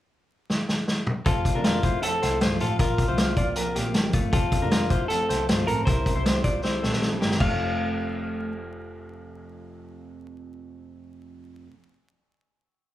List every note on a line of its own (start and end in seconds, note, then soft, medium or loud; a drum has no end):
0.50 snare medium
0.69 snare medium
0.88 snare medium
1.07 mid tom medium
1.26 1.42 F1 medium
1.26 1.55 C3 medium
1.26 1.55 F3 medium
1.26 1.55 A3 medium
1.26 1.53 C4 medium
1.26 1.55 C4 medium
1.26 1.63 F4 medium
1.26 1.53 A4 medium
1.26 kick loud
1.26 closed hi-hat medium
1.45 kick medium
1.45 closed hi-hat medium
1.55 2.18 F1 medium
1.55 1.75 F2 soft
1.55 1.75 C3 medium
1.55 1.75 F3 medium
1.55 1.74 A3 medium
1.55 1.74 C4 medium
1.55 1.82 D4 medium
1.55 1.82 A#4 medium
1.64 2.03 F4 medium
1.64 snare loud
1.64 closed hi-hat medium
1.75 2.03 F3 soft
1.75 2.04 A3 soft
1.75 2.03 C4 soft
1.83 2.03 E4 medium
1.83 2.03 C5 medium
1.83 kick medium
1.83 closed hi-hat medium
2.02 2.32 C3 medium
2.02 2.32 F3 medium
2.02 2.32 A3 medium
2.02 2.23 C4 medium
2.02 2.31 C4 medium
2.02 2.38 A4 medium
2.02 2.22 A4 medium
2.02 closed hi-hat medium
2.22 2.38 C2 medium
2.22 2.42 E4 medium
2.22 2.40 C5 medium
2.22 snare soft
2.22 closed hi-hat medium
2.32 2.51 F3 soft
2.32 2.51 A3 soft
2.32 2.50 C4 soft
2.41 2.57 G1 medium
2.41 2.61 F4 medium
2.41 2.60 C5 medium
2.41 snare medium
2.41 closed hi-hat medium
2.52 2.81 F2 medium
2.52 2.79 C3 medium
2.52 2.79 F3 medium
2.52 2.80 A3 medium
2.52 2.80 C4 medium
2.60 2.77 A1 medium
2.60 2.80 C4 medium
2.60 2.79 F4 medium
2.60 2.79 A4 medium
2.60 closed hi-hat medium
2.79 3.04 A#1 loud
2.79 3.08 A#2 medium
2.79 3.08 F3 medium
2.79 3.07 A#3 medium
2.79 3.07 C4 medium
2.79 3.91 F4 medium
2.79 3.07 F4 medium
2.79 3.06 A#4 loud
2.79 kick loud
2.79 closed hi-hat medium
2.98 kick medium
2.98 closed hi-hat medium
3.08 3.72 C2 medium
3.08 3.28 A#2 medium
3.08 3.28 F3 medium
3.08 3.27 A#3 medium
3.08 3.27 C4 medium
3.08 3.36 E4 medium
3.08 3.35 C5 medium
3.18 snare loud
3.18 closed hi-hat medium
3.28 3.55 F3 soft
3.28 3.56 A#3 soft
3.28 3.56 C4 medium
3.36 3.56 F4 medium
3.36 3.56 D5 medium
3.36 kick medium
3.36 closed hi-hat medium
3.55 3.84 A#2 medium
3.55 3.85 F3 medium
3.55 3.85 A#3 medium
3.55 3.84 C4 medium
3.55 3.75 F4 medium
3.55 3.75 A#4 medium
3.55 closed hi-hat medium
3.75 4.08 A#1 medium
3.75 4.12 A#3 medium
3.75 4.11 G4 medium
3.75 snare soft
3.75 closed hi-hat medium
3.85 4.03 F3 soft
3.85 4.03 A#3 medium
3.85 4.03 C4 medium
3.94 snare loud
3.94 closed hi-hat medium
4.04 4.32 A#2 medium
4.04 4.32 F3 medium
4.04 4.33 A#3 medium
4.04 4.33 C4 medium
4.13 4.30 G1 medium
4.13 4.33 A3 medium
4.13 4.33 F4 medium
4.13 kick medium
4.13 closed hi-hat medium
4.32 4.49 F1 loud
4.32 4.61 C3 medium
4.32 4.61 F3 medium
4.32 4.61 A3 medium
4.32 4.60 C4 medium
4.32 4.61 C4 medium
4.32 4.71 F4 medium
4.32 4.60 A4 medium
4.32 kick loud
4.32 closed hi-hat medium
4.52 kick medium
4.52 closed hi-hat medium
4.62 5.26 F1 medium
4.62 4.82 F2 soft
4.62 4.82 C3 medium
4.62 4.81 F3 medium
4.62 4.81 A3 medium
4.62 4.80 C4 medium
4.62 4.89 D4 medium
4.62 4.89 A#4 medium
4.71 5.08 F4 medium
4.71 snare loud
4.71 closed hi-hat medium
4.81 5.09 F3 soft
4.81 5.09 A3 soft
4.81 5.10 C4 soft
4.90 5.10 E4 medium
4.90 5.09 C5 medium
4.90 kick medium
4.90 closed hi-hat medium
5.08 5.38 C3 medium
5.08 5.39 F3 medium
5.08 5.39 A3 medium
5.08 5.29 C4 medium
5.08 5.37 C4 medium
5.08 5.45 A4 medium
5.08 5.29 A4 medium
5.08 closed hi-hat medium
5.29 5.45 C2 medium
5.29 5.49 E4 medium
5.29 5.48 C5 medium
5.29 snare soft
5.29 closed hi-hat medium
5.39 5.57 F3 soft
5.39 5.57 A3 soft
5.39 5.57 C4 medium
5.48 5.65 G1 medium
5.48 5.68 F4 medium
5.48 5.67 C5 medium
5.48 snare loud
5.48 closed hi-hat medium
5.58 5.87 F2 medium
5.58 5.85 C3 medium
5.58 5.87 F3 medium
5.58 5.87 A3 medium
5.58 5.87 C4 medium
5.67 5.84 A1 medium
5.67 5.87 C4 medium
5.67 5.87 A4 medium
5.67 5.85 A#4 medium
5.67 closed hi-hat medium
5.85 6.03 C2 loud
5.85 6.15 C3 medium
5.85 6.15 G3 medium
5.85 6.15 C4 medium
5.85 6.14 E4 medium
5.85 6.14 A#4 medium
5.85 6.97 C5 medium
5.85 kick loud
5.85 closed hi-hat medium
6.06 kick medium
6.06 closed hi-hat medium
6.15 6.82 C2 medium
6.15 6.35 C3 soft
6.15 6.35 G3 medium
6.15 6.34 C4 medium
6.15 6.34 E4 medium
6.15 6.43 E4 medium
6.15 6.43 C5 medium
6.26 snare loud
6.26 closed hi-hat medium
6.35 6.62 G3 soft
6.35 6.64 C4 soft
6.35 6.64 E4 medium
6.44 6.64 F4 medium
6.44 6.63 D5 medium
6.44 kick medium
6.44 closed hi-hat medium
6.63 6.92 C3 medium
6.63 6.93 G3 medium
6.63 6.93 C4 medium
6.63 6.83 E4 medium
6.63 6.91 E4 medium
6.63 6.83 C5 medium
6.63 snare medium
6.83 7.16 A#1 medium
6.83 7.19 C4 medium
6.83 7.19 A4 medium
6.83 snare medium
6.93 7.11 G3 soft
6.93 7.11 C4 soft
6.93 7.10 E4 medium
6.93 snare medium
7.02 snare medium
7.11 7.39 C3 medium
7.11 7.41 G3 medium
7.11 7.41 C4 medium
7.11 7.40 E4 medium
7.21 7.38 G1 medium
7.21 7.40 A#3 medium
7.21 7.40 G4 medium
7.21 snare medium
7.31 snare medium
7.38 11.24 F1 medium
7.38 11.67 F2 medium
7.38 11.69 C3 medium
7.38 8.52 A3 medium
7.38 11.65 F5 medium
7.38 kick medium
7.38 crash medium
7.43 11.71 F3 medium
7.43 11.73 A3 medium
7.43 11.74 C4 medium
7.47 11.76 F4 medium